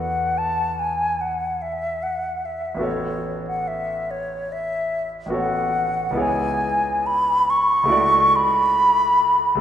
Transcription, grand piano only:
Already playing: E2 B3 F#4 A4 D5
2.74 A1 B3
2.79 F#4 A4
2.83 C#5
5.26 A1 B3
5.30 F#4 A4
5.34 C#5
6.10 C#2 B3
6.15 E4 G#4
6.19 C#5
7.83 C#2 A3
7.88 E4 F#4
7.92 D5
9.55 C#2 A3

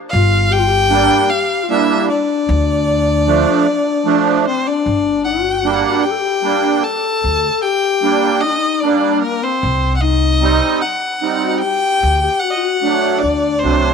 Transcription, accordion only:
0.90 G3 A#3 D4
1.70 G3 A#3 D4
3.27 F3 A3 D4
4.05 F3 A3 D4
5.64 G3 A#3 D4
6.43 G3 A#3 D4
8.02 G3 A#3 D4
8.83 G3 A#3 D4
10.42 G3 C4 D#4
11.22 G3 C4 D#4
12.82 F#3 A3 D4
13.62 F#3 A3 D4

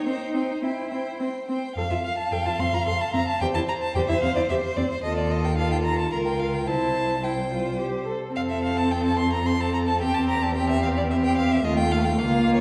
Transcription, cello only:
0.06 D#4
0.63 E4
1.76 F2
1.91 F2
2.32 F2
2.45 F2
2.59 F2
2.73 F2
2.86 F2
3.13 F2
3.41 E2
3.55 E2
3.95 E2
4.09 E2
4.22 E2
4.37 E2
4.50 E2
4.77 E2
5.03 D#2
6.13 C#2
6.68 C2
8.36 F2
10.00 E2
11.64 D#2
12.19 C#2

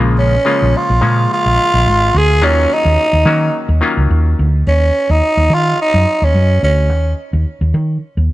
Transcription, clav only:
Already playing: C#3 F3 G#3 A#3 F4
0.45 C#3 F3 G#3 A#3 F4
1.01 C#3 F3 G#3 A#3 C#4
2.42 D#3 F#3 A#3 C#4 F4
3.25 D#3 F#3 A#3 C#4 F#4
3.81 D#3 F#3 A#3 C#4 F4

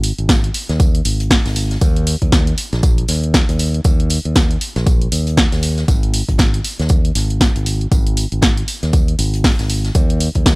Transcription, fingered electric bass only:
Already playing: G#1
0.18 G#1
0.69 D#2
1.05 G#1
1.46 G#1
1.81 D#2
2.22 D#2
2.73 A#1
3.09 D#2
3.49 D#2
3.85 D#2
4.25 D#2
4.76 A#1
5.12 D#2
5.52 D#2
5.88 G#1
6.29 G#1
6.79 D#2
7.15 G#1
7.56 G#1
7.92 G#1
8.32 G#1
8.83 D#2
9.19 G#1
9.59 G#1
9.95 D#2
10.35 D#2

